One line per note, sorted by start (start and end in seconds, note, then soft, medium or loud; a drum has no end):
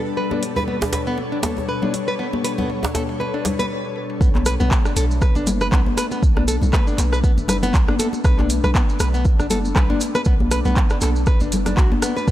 0.00 4.17 B2 medium
0.00 4.17 G3 medium
0.00 4.17 D4 medium
0.00 4.17 A4 medium
0.00 0.14 B4 medium
0.17 0.30 B4 medium
0.17 4.17 C#5 medium
0.17 mid tom loud
0.31 0.42 D4 medium
0.31 mid tom medium
0.31 muted conga medium
0.31 high conga loud
0.43 open hi-hat medium
0.43 mid tom medium
0.56 0.63 B4 medium
0.56 mid tom medium
0.56 djembe tone medium
0.56 low conga medium
0.68 0.75 B3 medium
0.68 mid tom loud
0.68 high conga medium
0.81 mid tom medium
0.81 muted conga soft
0.81 djembe slap loud
0.81 djembe tone medium
0.93 1.01 B4 medium
0.93 open hi-hat medium
0.93 mid tom loud
0.93 djembe slap loud
1.07 1.17 B3 loud
1.07 mid tom medium
1.18 mid tom medium
1.18 muted conga medium
1.32 1.38 D4 medium
1.32 mid tom medium
1.43 1.51 A4 medium
1.43 open hi-hat medium
1.43 mid tom loud
1.43 djembe slap loud
1.43 high conga medium
1.57 mid tom medium
1.57 muted conga soft
1.57 djembe tone medium
1.69 1.81 B4 medium
1.69 mid tom medium
1.82 1.93 D4 medium
1.82 mid tom medium
1.82 high conga medium
1.82 low conga loud
1.94 open hi-hat medium
1.94 mid tom medium
1.94 muted conga soft
2.08 2.14 B4 loud
2.08 mid tom medium
2.19 2.27 B3 medium
2.19 mid tom loud
2.33 mid tom medium
2.33 muted conga medium
2.33 high conga loud
2.44 2.52 B4 medium
2.44 open hi-hat medium
2.44 mid tom loud
2.58 2.68 B3 loud
2.58 mid tom medium
2.58 djembe tone medium
2.58 low conga loud
2.70 mid tom loud
2.70 high conga medium
2.83 2.90 D4 medium
2.83 mid tom medium
2.83 muted conga soft
2.83 djembe slap loud
2.83 djembe tone medium
2.95 3.02 A4 medium
2.95 open hi-hat medium
2.95 mid tom loud
2.95 djembe slap loud
2.95 high conga medium
3.09 mid tom medium
3.20 3.33 B4 medium
3.20 mid tom loud
3.20 muted conga medium
3.34 3.44 D4 medium
3.34 mid tom loud
3.45 open hi-hat loud
3.45 mid tom loud
3.45 djembe slap medium
3.45 low conga loud
3.59 3.65 B4 loud
3.59 open hi-hat medium
3.59 mid tom medium
3.59 muted conga soft
3.59 high conga medium
3.85 high tom medium
3.96 mid tom medium
4.10 mid tom medium
4.21 4.56 B1 loud
4.21 12.24 A3 medium
4.21 4.29 B3 medium
4.21 12.24 B3 medium
4.21 12.31 D4 medium
4.21 kick loud
4.21 maracas soft
4.35 clap soft
4.35 high conga loud
4.46 4.54 B4 medium
4.46 cross-stick medium
4.46 open hi-hat loud
4.46 maracas medium
4.60 4.69 B1 medium
4.60 4.70 B3 loud
4.60 muted conga medium
4.60 low conga medium
4.60 maracas soft
4.71 kick loud
4.71 clap loud
4.71 high conga medium
4.71 maracas medium
4.85 4.91 D4 medium
4.85 cross-stick medium
4.85 maracas soft
4.96 5.32 B1 medium
4.96 5.04 A4 medium
4.96 open hi-hat medium
4.96 muted conga soft
4.96 maracas medium
5.11 maracas soft
5.22 5.35 B4 medium
5.22 kick loud
5.22 cross-stick medium
5.22 maracas medium
5.35 5.69 F#1 medium
5.35 5.46 D4 medium
5.35 muted conga medium
5.35 maracas soft
5.47 open hi-hat medium
5.47 high conga medium
5.47 low conga loud
5.47 maracas medium
5.61 5.67 B4 loud
5.61 cross-stick medium
5.61 maracas soft
5.72 5.84 B1 loud
5.72 5.80 B3 medium
5.72 kick loud
5.72 clap loud
5.72 muted conga soft
5.72 low conga loud
5.72 maracas soft
5.86 high conga loud
5.97 6.05 B4 medium
5.97 cross-stick medium
5.97 open hi-hat medium
5.97 maracas medium
6.11 6.22 B3 loud
6.11 muted conga medium
6.11 maracas soft
6.23 6.58 B1 loud
6.23 kick loud
6.23 maracas medium
6.37 6.43 D4 medium
6.37 cross-stick medium
6.37 high conga loud
6.48 6.55 A4 medium
6.48 open hi-hat loud
6.48 maracas loud
6.61 6.71 B1 medium
6.61 muted conga medium
6.61 low conga loud
6.61 maracas soft
6.73 6.86 B4 medium
6.73 kick loud
6.73 cross-stick medium
6.73 clap loud
6.73 high conga medium
6.73 maracas medium
6.87 6.97 D4 medium
6.87 maracas soft
6.98 7.34 B1 medium
6.98 clap soft
6.98 open hi-hat medium
6.98 high conga medium
6.98 maracas medium
7.12 7.18 B4 medium
7.12 cross-stick medium
7.12 maracas soft
7.24 7.31 B3 medium
7.24 kick loud
7.24 maracas medium
7.37 7.71 F#1 medium
7.37 muted conga medium
7.37 maracas soft
7.48 7.56 B4 medium
7.48 cross-stick medium
7.48 open hi-hat medium
7.48 low conga loud
7.48 maracas medium
7.63 7.73 B3 loud
7.63 open hi-hat medium
7.63 high conga medium
7.63 low conga loud
7.63 maracas soft
7.74 7.86 B1 loud
7.74 kick loud
7.74 clap loud
7.74 maracas medium
7.88 7.94 D4 medium
7.88 cross-stick medium
7.88 high conga loud
7.99 8.07 A4 medium
7.99 open hi-hat medium
7.99 high conga medium
7.99 maracas medium
8.13 muted conga medium
8.13 maracas soft
8.24 8.60 B1 loud
8.24 8.37 B4 medium
8.24 kick loud
8.24 cross-stick loud
8.24 maracas medium
8.39 8.49 D4 medium
8.39 clap soft
8.39 high conga loud
8.50 open hi-hat medium
8.50 maracas loud
8.64 8.73 B1 medium
8.64 8.70 B4 loud
8.64 cross-stick medium
8.64 muted conga medium
8.64 low conga medium
8.64 maracas soft
8.74 8.82 B3 medium
8.74 kick loud
8.74 clap loud
8.74 high conga medium
8.74 maracas medium
8.89 maracas soft
8.99 9.35 B1 medium
8.99 9.08 B4 medium
8.99 cross-stick loud
8.99 open hi-hat loud
8.99 muted conga soft
8.99 maracas medium
9.14 9.24 B3 loud
9.14 maracas soft
9.25 kick loud
9.25 maracas medium
9.39 9.72 F#1 medium
9.39 9.45 D4 medium
9.39 cross-stick medium
9.39 muted conga medium
9.39 maracas soft
9.50 9.58 A4 medium
9.50 open hi-hat medium
9.50 high conga loud
9.50 low conga loud
9.50 maracas medium
9.65 maracas soft
9.76 9.87 B1 medium
9.76 9.88 B4 medium
9.76 kick loud
9.76 cross-stick medium
9.76 clap medium
9.76 muted conga soft
9.76 low conga loud
9.76 maracas medium
9.90 10.00 D4 medium
9.90 high conga loud
10.00 open hi-hat medium
10.00 maracas loud
10.15 10.21 B4 loud
10.15 cross-stick medium
10.15 muted conga medium
10.15 maracas soft
10.25 10.61 B1 loud
10.25 10.34 B3 medium
10.25 kick loud
10.25 maracas medium
10.40 high conga loud
10.51 10.59 B4 medium
10.51 cross-stick medium
10.51 open hi-hat medium
10.51 maracas loud
10.65 10.74 B1 medium
10.65 10.75 B3 medium
10.65 muted conga medium
10.65 low conga medium
10.65 maracas soft
10.76 kick loud
10.76 clap medium
10.76 high conga medium
10.76 maracas soft
10.90 10.97 D4 medium
10.90 cross-stick medium
10.90 maracas soft
11.01 11.37 B1 medium
11.01 11.09 A4 medium
11.01 clap soft
11.01 open hi-hat medium
11.01 high conga medium
11.01 maracas medium
11.16 maracas soft
11.26 11.40 B4 medium
11.26 kick loud
11.26 cross-stick medium
11.26 maracas medium
11.40 11.74 F#1 medium
11.40 11.51 D4 medium
11.40 muted conga medium
11.40 maracas soft
11.52 open hi-hat medium
11.52 low conga loud
11.52 maracas medium
11.66 11.76 D4 medium
11.66 cross-stick medium
11.66 open hi-hat soft
11.66 high conga medium
11.66 low conga loud
11.66 maracas soft
11.77 11.89 B1 medium
11.77 11.90 F#4 medium
11.77 kick loud
11.77 clap loud
11.77 muted conga soft
11.77 maracas medium
11.92 high conga loud
12.02 12.15 B3 medium
12.02 cross-stick loud
12.02 open hi-hat medium
12.02 high conga medium
12.02 maracas medium
12.17 12.27 B4 medium
12.17 muted conga medium
12.17 maracas soft
12.28 12.31 B1 medium
12.28 12.31 B3 medium
12.28 kick loud
12.28 maracas medium